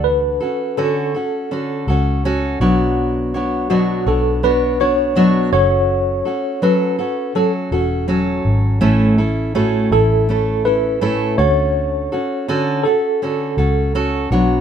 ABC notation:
X:1
M:4/4
L:1/8
Q:"Swing 16ths" 1/4=82
K:Dlyd
V:1 name="Tine electric piano"
B2 A4- A z | z2 F A B c2 c- | c2 B2 A F2 z | z2 F A2 B2 c- |
c3 A4 z |]
V:2 name="Steel-string acoustic guitar"
[D,FA] [CFA] [D,CFA] [CFA] [D,CFA] [CFA] [CFA] [B,,F,B,DFc]- | [B,,F,B,DFc] [B,DFc] [B,,F,B,DFc] [B,DFc] [B,DFc] [B,DFc] [B,,F,B,DFc] [F,CFA]- | [F,CFA] [CFA] [F,CFA] [CFA] [F,CFA] [CFA] [F,CFA]2 | [A,,A,CEA] [CEA] [A,,A,CEA] [CEA] [A,CEA] [CEA] [A,,A,CEA] [D,CFA]- |
[D,CFA] [CFA] [D,CFA] [CFA] [D,CFA] [CFA] [CFA] [B,,F,B,DFc] |]
V:3 name="Fingered electric bass" clef=bass
D,, z4 C,,2 B,,,- | B,,,3 B,,,4 F,,,- | F,,, z4 E,,,2 G,,, | A,,,3 A,,,4 D,,- |
D,, z4 C,,2 B,,, |]